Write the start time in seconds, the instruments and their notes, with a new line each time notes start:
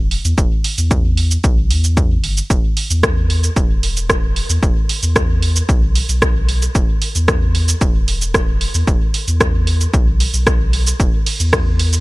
Already playing: sub bass E1
0.11 open hi-hat
0.25 sub bass E2, shaker
0.38 sub bass E1, kick, shaker
0.64 open hi-hat
0.78 sub bass E2, shaker
0.91 kick, shaker
1.17 open hi-hat
1.31 shaker
1.44 sub bass B1, kick, shaker
1.71 sub bass E2, open hi-hat
1.84 shaker
1.97 kick, shaker
2.24 sub bass G1, open hi-hat
2.37 shaker
2.50 sub bass E1, kick, shaker
2.77 open hi-hat
2.90 sub bass E2, shaker
3.03 kick, cross-stick, shaker
3.30 open hi-hat
3.43 shaker
3.56 sub bass E1, kick, shaker
3.83 open hi-hat
3.97 shaker
4.09 kick, cross-stick, shaker
4.36 open hi-hat
4.49 sub bass E2, shaker
4.63 sub bass E1, kick, shaker
4.89 open hi-hat
5.03 sub bass E2, shaker
5.16 kick, cross-stick, shaker
5.42 open hi-hat
5.56 shaker
5.69 sub bass B1, kick, shaker
5.95 open hi-hat
6.09 sub bass B1, shaker
6.22 kick, cross-stick, shaker
6.49 open hi-hat
6.62 shaker
6.75 sub bass E1, kick, shaker
7.02 open hi-hat
7.15 sub bass E2, shaker
7.28 kick, cross-stick, shaker
7.55 open hi-hat
7.68 shaker
7.81 sub bass E1, kick, shaker
8.08 open hi-hat
8.21 shaker
8.34 kick, cross-stick, shaker
8.61 open hi-hat
8.74 sub bass E2, shaker
8.87 sub bass E1, kick, shaker
9.14 open hi-hat
9.27 sub bass E2, shaker
9.40 kick, cross-stick, shaker
9.67 open hi-hat
9.81 shaker
9.94 sub bass B1, kick, shaker
10.20 open hi-hat
10.33 sub bass B1, shaker
10.47 kick, cross-stick, shaker
10.73 open hi-hat
10.87 shaker
11.00 sub bass E1, kick, shaker
11.26 open hi-hat, ride
11.40 sub bass E2, shaker
11.53 kick, cross-stick, shaker
11.79 open hi-hat, ride
11.93 shaker